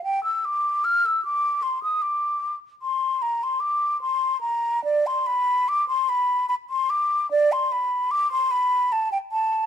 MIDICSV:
0, 0, Header, 1, 2, 480
1, 0, Start_track
1, 0, Tempo, 794702
1, 25, Time_signature, 3, 2, 24, 8
1, 2425, Tempo, 832178
1, 3385, Tempo, 807537
1, 5752, End_track
2, 0, Start_track
2, 0, Title_t, "Flute"
2, 0, Program_c, 0, 73
2, 23, Note_on_c, 0, 79, 97
2, 140, Note_off_c, 0, 79, 0
2, 143, Note_on_c, 0, 88, 73
2, 271, Note_on_c, 0, 86, 82
2, 280, Note_off_c, 0, 88, 0
2, 510, Note_on_c, 0, 89, 93
2, 519, Note_off_c, 0, 86, 0
2, 638, Note_on_c, 0, 88, 78
2, 647, Note_off_c, 0, 89, 0
2, 750, Note_off_c, 0, 88, 0
2, 754, Note_on_c, 0, 86, 87
2, 981, Note_on_c, 0, 84, 81
2, 990, Note_off_c, 0, 86, 0
2, 1102, Note_off_c, 0, 84, 0
2, 1107, Note_on_c, 0, 87, 74
2, 1219, Note_on_c, 0, 86, 73
2, 1228, Note_off_c, 0, 87, 0
2, 1545, Note_off_c, 0, 86, 0
2, 1704, Note_on_c, 0, 84, 81
2, 1946, Note_on_c, 0, 82, 87
2, 1955, Note_off_c, 0, 84, 0
2, 2075, Note_on_c, 0, 84, 82
2, 2084, Note_off_c, 0, 82, 0
2, 2176, Note_on_c, 0, 86, 89
2, 2185, Note_off_c, 0, 84, 0
2, 2421, Note_off_c, 0, 86, 0
2, 2424, Note_on_c, 0, 84, 84
2, 2648, Note_off_c, 0, 84, 0
2, 2652, Note_on_c, 0, 82, 88
2, 2897, Note_off_c, 0, 82, 0
2, 2903, Note_on_c, 0, 74, 97
2, 3031, Note_on_c, 0, 84, 88
2, 3040, Note_off_c, 0, 74, 0
2, 3146, Note_on_c, 0, 83, 94
2, 3155, Note_off_c, 0, 84, 0
2, 3388, Note_on_c, 0, 86, 101
2, 3397, Note_off_c, 0, 83, 0
2, 3503, Note_off_c, 0, 86, 0
2, 3507, Note_on_c, 0, 84, 89
2, 3630, Note_on_c, 0, 83, 99
2, 3639, Note_off_c, 0, 84, 0
2, 3861, Note_off_c, 0, 83, 0
2, 3865, Note_on_c, 0, 83, 98
2, 3901, Note_off_c, 0, 83, 0
2, 3991, Note_on_c, 0, 84, 84
2, 4110, Note_on_c, 0, 86, 91
2, 4119, Note_off_c, 0, 84, 0
2, 4350, Note_off_c, 0, 86, 0
2, 4355, Note_on_c, 0, 74, 107
2, 4480, Note_on_c, 0, 84, 96
2, 4489, Note_off_c, 0, 74, 0
2, 4598, Note_on_c, 0, 83, 87
2, 4607, Note_off_c, 0, 84, 0
2, 4831, Note_on_c, 0, 86, 104
2, 4840, Note_off_c, 0, 83, 0
2, 4949, Note_off_c, 0, 86, 0
2, 4955, Note_on_c, 0, 84, 92
2, 5068, Note_on_c, 0, 83, 96
2, 5077, Note_off_c, 0, 84, 0
2, 5313, Note_on_c, 0, 81, 88
2, 5322, Note_off_c, 0, 83, 0
2, 5426, Note_off_c, 0, 81, 0
2, 5430, Note_on_c, 0, 79, 88
2, 5466, Note_off_c, 0, 79, 0
2, 5549, Note_on_c, 0, 81, 93
2, 5752, Note_off_c, 0, 81, 0
2, 5752, End_track
0, 0, End_of_file